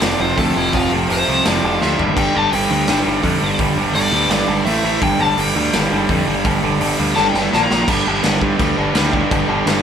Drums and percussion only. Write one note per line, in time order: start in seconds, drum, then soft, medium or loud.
0.01 snare loud
0.01 open hi-hat medium
0.38 kick medium
0.38 open hi-hat medium
0.73 kick loud
0.73 open hi-hat medium
1.10 open hi-hat medium
1.45 snare loud
1.45 open hi-hat medium
1.82 snare medium
1.99 floor tom medium
2.17 kick loud
2.17 crash medium
2.53 open hi-hat medium
2.87 snare loud
2.87 open hi-hat medium
3.23 kick medium
3.23 open hi-hat medium
3.59 kick loud
3.59 open hi-hat medium
3.95 open hi-hat medium
4.30 snare loud
4.30 open hi-hat medium
4.66 open hi-hat medium
5.02 kick loud
5.02 open hi-hat medium
5.38 open hi-hat medium
5.73 snare loud
5.73 open hi-hat medium
6.09 kick medium
6.09 open hi-hat medium
6.45 kick loud
6.45 open hi-hat medium
6.81 open hi-hat medium
7.16 snare medium
7.34 snare medium
7.53 snare medium
7.71 snare medium
7.88 kick loud
7.88 crash loud
7.88 crash medium
8.23 snare loud
8.23 crash medium
8.42 kick medium
8.59 kick loud
8.59 crash medium
8.95 snare loud
8.95 crash medium
9.13 kick medium
9.31 kick loud
9.31 crash medium
9.67 snare loud
9.67 crash medium